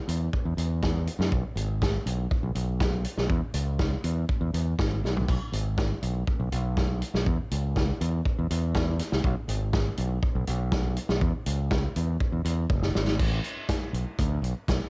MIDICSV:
0, 0, Header, 1, 3, 480
1, 0, Start_track
1, 0, Tempo, 495050
1, 1275, Time_signature, 4, 2, 24, 8
1, 14437, End_track
2, 0, Start_track
2, 0, Title_t, "Fingered electric bass"
2, 0, Program_c, 0, 33
2, 75, Note_on_c, 0, 40, 80
2, 268, Note_off_c, 0, 40, 0
2, 440, Note_on_c, 0, 40, 78
2, 534, Note_off_c, 0, 40, 0
2, 554, Note_on_c, 0, 40, 82
2, 1037, Note_off_c, 0, 40, 0
2, 1151, Note_on_c, 0, 42, 86
2, 1250, Note_off_c, 0, 42, 0
2, 1283, Note_on_c, 0, 35, 103
2, 1377, Note_off_c, 0, 35, 0
2, 1508, Note_on_c, 0, 32, 85
2, 1897, Note_off_c, 0, 32, 0
2, 1996, Note_on_c, 0, 35, 84
2, 2189, Note_off_c, 0, 35, 0
2, 2356, Note_on_c, 0, 35, 81
2, 2452, Note_off_c, 0, 35, 0
2, 2473, Note_on_c, 0, 35, 88
2, 2957, Note_off_c, 0, 35, 0
2, 3079, Note_on_c, 0, 35, 89
2, 3174, Note_off_c, 0, 35, 0
2, 3200, Note_on_c, 0, 40, 95
2, 3295, Note_off_c, 0, 40, 0
2, 3434, Note_on_c, 0, 37, 88
2, 3820, Note_off_c, 0, 37, 0
2, 3918, Note_on_c, 0, 40, 90
2, 4110, Note_off_c, 0, 40, 0
2, 4274, Note_on_c, 0, 40, 85
2, 4371, Note_off_c, 0, 40, 0
2, 4399, Note_on_c, 0, 40, 87
2, 4590, Note_off_c, 0, 40, 0
2, 4642, Note_on_c, 0, 32, 75
2, 4855, Note_off_c, 0, 32, 0
2, 4887, Note_on_c, 0, 35, 82
2, 5098, Note_off_c, 0, 35, 0
2, 5126, Note_on_c, 0, 35, 99
2, 5218, Note_off_c, 0, 35, 0
2, 5355, Note_on_c, 0, 32, 89
2, 5741, Note_off_c, 0, 32, 0
2, 5842, Note_on_c, 0, 35, 85
2, 6032, Note_off_c, 0, 35, 0
2, 6200, Note_on_c, 0, 35, 78
2, 6295, Note_off_c, 0, 35, 0
2, 6322, Note_on_c, 0, 35, 91
2, 6802, Note_off_c, 0, 35, 0
2, 6922, Note_on_c, 0, 35, 78
2, 7015, Note_off_c, 0, 35, 0
2, 7048, Note_on_c, 0, 40, 101
2, 7139, Note_off_c, 0, 40, 0
2, 7287, Note_on_c, 0, 37, 90
2, 7668, Note_off_c, 0, 37, 0
2, 7766, Note_on_c, 0, 40, 94
2, 7954, Note_off_c, 0, 40, 0
2, 8132, Note_on_c, 0, 40, 79
2, 8221, Note_off_c, 0, 40, 0
2, 8248, Note_on_c, 0, 40, 88
2, 8725, Note_off_c, 0, 40, 0
2, 8847, Note_on_c, 0, 36, 89
2, 8938, Note_off_c, 0, 36, 0
2, 8965, Note_on_c, 0, 35, 107
2, 9057, Note_off_c, 0, 35, 0
2, 9192, Note_on_c, 0, 32, 94
2, 9579, Note_off_c, 0, 32, 0
2, 9677, Note_on_c, 0, 35, 97
2, 9869, Note_off_c, 0, 35, 0
2, 10037, Note_on_c, 0, 35, 88
2, 10132, Note_off_c, 0, 35, 0
2, 10157, Note_on_c, 0, 35, 91
2, 10638, Note_off_c, 0, 35, 0
2, 10753, Note_on_c, 0, 35, 87
2, 10849, Note_off_c, 0, 35, 0
2, 10873, Note_on_c, 0, 40, 107
2, 10969, Note_off_c, 0, 40, 0
2, 11116, Note_on_c, 0, 37, 94
2, 11501, Note_off_c, 0, 37, 0
2, 11599, Note_on_c, 0, 40, 92
2, 11790, Note_off_c, 0, 40, 0
2, 11949, Note_on_c, 0, 40, 83
2, 12047, Note_off_c, 0, 40, 0
2, 12069, Note_on_c, 0, 40, 98
2, 12263, Note_off_c, 0, 40, 0
2, 12310, Note_on_c, 0, 30, 83
2, 12528, Note_off_c, 0, 30, 0
2, 12560, Note_on_c, 0, 32, 95
2, 12773, Note_off_c, 0, 32, 0
2, 12794, Note_on_c, 0, 33, 89
2, 12987, Note_off_c, 0, 33, 0
2, 13507, Note_on_c, 0, 35, 78
2, 13606, Note_off_c, 0, 35, 0
2, 13755, Note_on_c, 0, 38, 97
2, 13948, Note_off_c, 0, 38, 0
2, 13981, Note_on_c, 0, 35, 88
2, 14083, Note_off_c, 0, 35, 0
2, 14241, Note_on_c, 0, 35, 85
2, 14335, Note_off_c, 0, 35, 0
2, 14437, End_track
3, 0, Start_track
3, 0, Title_t, "Drums"
3, 82, Note_on_c, 9, 42, 89
3, 179, Note_off_c, 9, 42, 0
3, 322, Note_on_c, 9, 36, 96
3, 419, Note_off_c, 9, 36, 0
3, 561, Note_on_c, 9, 42, 76
3, 658, Note_off_c, 9, 42, 0
3, 801, Note_on_c, 9, 36, 93
3, 806, Note_on_c, 9, 38, 95
3, 897, Note_off_c, 9, 36, 0
3, 903, Note_off_c, 9, 38, 0
3, 1040, Note_on_c, 9, 42, 83
3, 1136, Note_off_c, 9, 42, 0
3, 1168, Note_on_c, 9, 38, 76
3, 1265, Note_off_c, 9, 38, 0
3, 1280, Note_on_c, 9, 36, 111
3, 1377, Note_off_c, 9, 36, 0
3, 1521, Note_on_c, 9, 42, 80
3, 1618, Note_off_c, 9, 42, 0
3, 1763, Note_on_c, 9, 36, 108
3, 1772, Note_on_c, 9, 38, 108
3, 1860, Note_off_c, 9, 36, 0
3, 1869, Note_off_c, 9, 38, 0
3, 2002, Note_on_c, 9, 42, 76
3, 2099, Note_off_c, 9, 42, 0
3, 2241, Note_on_c, 9, 36, 108
3, 2338, Note_off_c, 9, 36, 0
3, 2475, Note_on_c, 9, 42, 72
3, 2572, Note_off_c, 9, 42, 0
3, 2719, Note_on_c, 9, 36, 109
3, 2721, Note_on_c, 9, 38, 104
3, 2816, Note_off_c, 9, 36, 0
3, 2818, Note_off_c, 9, 38, 0
3, 2953, Note_on_c, 9, 42, 78
3, 3050, Note_off_c, 9, 42, 0
3, 3079, Note_on_c, 9, 38, 69
3, 3176, Note_off_c, 9, 38, 0
3, 3197, Note_on_c, 9, 36, 106
3, 3294, Note_off_c, 9, 36, 0
3, 3430, Note_on_c, 9, 42, 94
3, 3527, Note_off_c, 9, 42, 0
3, 3678, Note_on_c, 9, 36, 92
3, 3679, Note_on_c, 9, 38, 97
3, 3775, Note_off_c, 9, 36, 0
3, 3776, Note_off_c, 9, 38, 0
3, 3915, Note_on_c, 9, 42, 80
3, 4012, Note_off_c, 9, 42, 0
3, 4160, Note_on_c, 9, 36, 100
3, 4257, Note_off_c, 9, 36, 0
3, 4403, Note_on_c, 9, 42, 80
3, 4500, Note_off_c, 9, 42, 0
3, 4642, Note_on_c, 9, 36, 100
3, 4647, Note_on_c, 9, 38, 98
3, 4739, Note_off_c, 9, 36, 0
3, 4743, Note_off_c, 9, 38, 0
3, 4895, Note_on_c, 9, 38, 56
3, 4992, Note_off_c, 9, 38, 0
3, 5010, Note_on_c, 9, 43, 83
3, 5107, Note_off_c, 9, 43, 0
3, 5123, Note_on_c, 9, 36, 114
3, 5128, Note_on_c, 9, 55, 75
3, 5220, Note_off_c, 9, 36, 0
3, 5225, Note_off_c, 9, 55, 0
3, 5364, Note_on_c, 9, 42, 89
3, 5460, Note_off_c, 9, 42, 0
3, 5601, Note_on_c, 9, 36, 105
3, 5606, Note_on_c, 9, 38, 101
3, 5698, Note_off_c, 9, 36, 0
3, 5703, Note_off_c, 9, 38, 0
3, 5842, Note_on_c, 9, 42, 74
3, 5939, Note_off_c, 9, 42, 0
3, 6083, Note_on_c, 9, 36, 100
3, 6180, Note_off_c, 9, 36, 0
3, 6322, Note_on_c, 9, 42, 73
3, 6419, Note_off_c, 9, 42, 0
3, 6564, Note_on_c, 9, 36, 106
3, 6569, Note_on_c, 9, 38, 99
3, 6661, Note_off_c, 9, 36, 0
3, 6666, Note_off_c, 9, 38, 0
3, 6804, Note_on_c, 9, 42, 80
3, 6901, Note_off_c, 9, 42, 0
3, 6929, Note_on_c, 9, 38, 74
3, 7026, Note_off_c, 9, 38, 0
3, 7044, Note_on_c, 9, 36, 110
3, 7141, Note_off_c, 9, 36, 0
3, 7286, Note_on_c, 9, 42, 90
3, 7383, Note_off_c, 9, 42, 0
3, 7524, Note_on_c, 9, 36, 109
3, 7533, Note_on_c, 9, 38, 96
3, 7621, Note_off_c, 9, 36, 0
3, 7630, Note_off_c, 9, 38, 0
3, 7768, Note_on_c, 9, 42, 79
3, 7865, Note_off_c, 9, 42, 0
3, 8004, Note_on_c, 9, 36, 97
3, 8101, Note_off_c, 9, 36, 0
3, 8247, Note_on_c, 9, 42, 86
3, 8344, Note_off_c, 9, 42, 0
3, 8482, Note_on_c, 9, 36, 97
3, 8485, Note_on_c, 9, 38, 107
3, 8579, Note_off_c, 9, 36, 0
3, 8582, Note_off_c, 9, 38, 0
3, 8718, Note_on_c, 9, 42, 86
3, 8724, Note_on_c, 9, 38, 31
3, 8815, Note_off_c, 9, 42, 0
3, 8821, Note_off_c, 9, 38, 0
3, 8845, Note_on_c, 9, 38, 77
3, 8942, Note_off_c, 9, 38, 0
3, 8960, Note_on_c, 9, 36, 108
3, 9057, Note_off_c, 9, 36, 0
3, 9198, Note_on_c, 9, 42, 93
3, 9295, Note_off_c, 9, 42, 0
3, 9437, Note_on_c, 9, 36, 95
3, 9439, Note_on_c, 9, 38, 101
3, 9534, Note_off_c, 9, 36, 0
3, 9536, Note_off_c, 9, 38, 0
3, 9671, Note_on_c, 9, 42, 79
3, 9768, Note_off_c, 9, 42, 0
3, 9915, Note_on_c, 9, 36, 109
3, 10012, Note_off_c, 9, 36, 0
3, 10154, Note_on_c, 9, 42, 76
3, 10251, Note_off_c, 9, 42, 0
3, 10394, Note_on_c, 9, 36, 111
3, 10395, Note_on_c, 9, 38, 100
3, 10491, Note_off_c, 9, 36, 0
3, 10492, Note_off_c, 9, 38, 0
3, 10632, Note_on_c, 9, 42, 76
3, 10729, Note_off_c, 9, 42, 0
3, 10755, Note_on_c, 9, 38, 77
3, 10852, Note_off_c, 9, 38, 0
3, 10873, Note_on_c, 9, 36, 100
3, 10970, Note_off_c, 9, 36, 0
3, 11113, Note_on_c, 9, 42, 95
3, 11210, Note_off_c, 9, 42, 0
3, 11354, Note_on_c, 9, 36, 110
3, 11359, Note_on_c, 9, 38, 105
3, 11451, Note_off_c, 9, 36, 0
3, 11456, Note_off_c, 9, 38, 0
3, 11595, Note_on_c, 9, 42, 79
3, 11692, Note_off_c, 9, 42, 0
3, 11834, Note_on_c, 9, 36, 101
3, 11931, Note_off_c, 9, 36, 0
3, 12076, Note_on_c, 9, 42, 89
3, 12173, Note_off_c, 9, 42, 0
3, 12312, Note_on_c, 9, 36, 113
3, 12314, Note_on_c, 9, 48, 56
3, 12409, Note_off_c, 9, 36, 0
3, 12411, Note_off_c, 9, 48, 0
3, 12436, Note_on_c, 9, 38, 66
3, 12533, Note_off_c, 9, 38, 0
3, 12558, Note_on_c, 9, 38, 81
3, 12655, Note_off_c, 9, 38, 0
3, 12677, Note_on_c, 9, 38, 83
3, 12774, Note_off_c, 9, 38, 0
3, 12792, Note_on_c, 9, 36, 105
3, 12792, Note_on_c, 9, 49, 100
3, 12889, Note_off_c, 9, 36, 0
3, 12889, Note_off_c, 9, 49, 0
3, 13031, Note_on_c, 9, 42, 70
3, 13128, Note_off_c, 9, 42, 0
3, 13270, Note_on_c, 9, 42, 87
3, 13272, Note_on_c, 9, 36, 100
3, 13276, Note_on_c, 9, 38, 106
3, 13367, Note_off_c, 9, 42, 0
3, 13369, Note_off_c, 9, 36, 0
3, 13373, Note_off_c, 9, 38, 0
3, 13517, Note_on_c, 9, 42, 61
3, 13614, Note_off_c, 9, 42, 0
3, 13754, Note_on_c, 9, 36, 101
3, 13758, Note_on_c, 9, 42, 88
3, 13851, Note_off_c, 9, 36, 0
3, 13855, Note_off_c, 9, 42, 0
3, 13998, Note_on_c, 9, 42, 60
3, 14095, Note_off_c, 9, 42, 0
3, 14236, Note_on_c, 9, 36, 102
3, 14238, Note_on_c, 9, 42, 77
3, 14244, Note_on_c, 9, 38, 97
3, 14333, Note_off_c, 9, 36, 0
3, 14335, Note_off_c, 9, 42, 0
3, 14341, Note_off_c, 9, 38, 0
3, 14437, End_track
0, 0, End_of_file